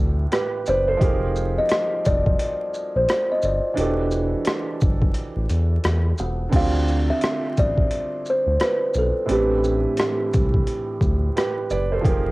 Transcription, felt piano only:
Already playing: A2 E3 C4 D4 G4 B4
0.32 G4 B4
0.68 B4 D5
0.88 A4 C5
0.97 F3 D#4 G4
1.02 G#4 A#4
3.74 E3 D4 F#4
3.79 G4 A4
6.49 D3 C4
6.53 F4 G4 D5
9.26 A2 E3 C4
9.30 D4 G4 B4
11.36 G4 B4
11.71 B4 D5
11.92 A4 C5
12.01 D#3 F3 G4
12.06 G#4 A#4

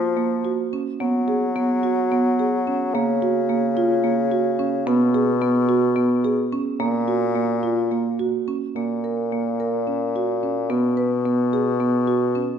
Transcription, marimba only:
0.17 A#3
0.45 F#4
0.73 C#4
1.00 B3
1.28 G#4
1.56 B3
1.83 F#4
2.12 B3
2.39 G#4
2.67 C#4
2.95 A#3
3.22 F#4
3.49 A#3
3.77 F4
4.04 A#3
4.32 F#4
4.59 C#4
4.87 B3
5.14 G#4
5.42 B3
5.69 F#4
5.96 B3
6.24 G#4
6.53 C#4
6.80 A#3
7.08 F#4
7.35 A#3
7.63 F4
7.91 A#3
8.19 F#4
8.48 C#4
8.76 A#3
9.04 A#4
9.32 A#3
9.60 A#4
9.87 C#4
10.16 F#4
10.43 C#4
10.70 B3
10.97 B4
11.25 B3
11.53 G#4
11.80 B3
12.07 F#4
12.35 C#4

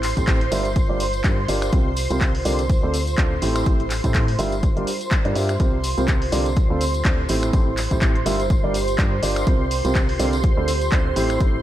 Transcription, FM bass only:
Already playing: A1
0.17 A1
0.52 G1
0.90 G1
1.24 G2
1.48 G1
1.73 C2
2.11 C2
2.45 C2
2.83 D2
3.18 D2
3.42 A1
3.66 A1
4.04 A2
4.39 G1
4.77 G1
5.25 G2
5.36 G2
5.60 C2
5.98 C2
6.32 C2
6.70 D2
7.05 D2
7.29 A1
7.53 A1
7.91 A1
8.26 G1
8.64 G1
8.99 G2
9.23 G1
9.47 C2
9.85 C2
10.19 C2
10.57 D2
10.92 D2
11.16 A1
11.40 A1

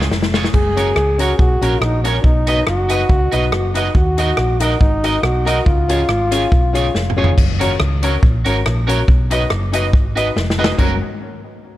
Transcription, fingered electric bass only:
0.11 F1
0.54 F#1
0.96 C#2
1.39 B1
1.61 A#1
1.81 A#1
2.24 B1
2.67 F#1
3.09 C#2
3.33 B1
3.52 F#1
3.95 D#2
4.38 A#1
4.81 G#1
5.23 B1
5.66 C#2
6.08 G#1
6.52 B1
6.94 F1
7.38 F#1
7.80 C#2
8.23 A#1
8.46 G#1
8.66 A#1
9.08 B1
9.51 F#1
9.93 G#1
10.36 F1
10.79 F#1

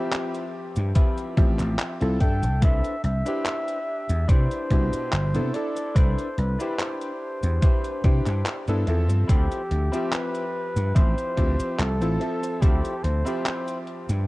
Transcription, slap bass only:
0.77 G2
1.37 A1
1.60 A1
2.01 C2
2.20 G2
2.43 C2
2.62 C2
3.04 C2
4.09 E2
4.29 C3
4.70 C2
4.93 muted slap bass stroke
5.13 G1
5.35 C3
5.96 C2
6.38 C2
7.43 E2
8.04 C3
8.26 G2
8.68 G2
8.87 E2
9.10 G2
9.29 D2
9.71 D2
10.76 G2
10.96 A1
11.37 D2
11.59 muted slap bass stroke
11.79 C2
12.01 A1
12.62 D2
13.04 D2
14.09 G2

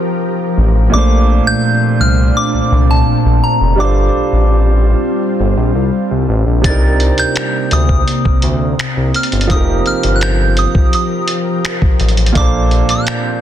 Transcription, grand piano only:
Already playing: F3 C4 D#4 G4 A#4
0.90 A#2 A#3
0.94 A3 D4 C5
3.76 G3 D4
3.80 F4 A4 C5
6.62 C3 C4 D4
6.67 D#4 A#4
9.47 F3 C4
9.51 D#4 G4 A#4
12.32 A#2 A#3
12.36 D4 A4
12.40 C5

